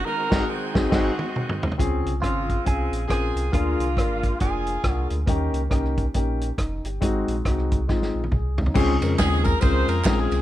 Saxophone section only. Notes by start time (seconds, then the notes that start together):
0.05 D#4 F#4 A#4
0.49 C4 D#4 G#4
0.93 C4 D#4 F#4
2.24 G#3 C4 F4
2.65 C4 F4 G#4
3.08 C4 F4 G#4
3.52 G#3 A#3 F4
4.40 F4 G#4
9.19 G#4
9.45 A#4
9.61 F4 G#4 C5
9.90 A#4
10.20 G#4